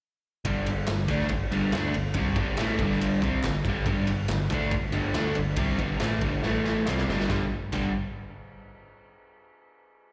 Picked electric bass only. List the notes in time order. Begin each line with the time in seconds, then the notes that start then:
0.45 G1
0.67 G1
0.88 G1
1.08 D2
1.30 G1
1.52 G1
1.72 D2
1.95 G1
2.15 C2
2.36 G1
2.58 A1
2.79 G1
3.22 C2
3.43 G1
3.64 G1
3.85 G1
4.07 G1
4.29 G1
4.50 D2
4.71 G1
4.92 G1
5.14 D2
5.37 G1
5.56 C2
5.78 G1
6.01 A1
6.22 G1
6.44 A1
6.89 C2
7.08 G1
7.29 G1
7.72 G1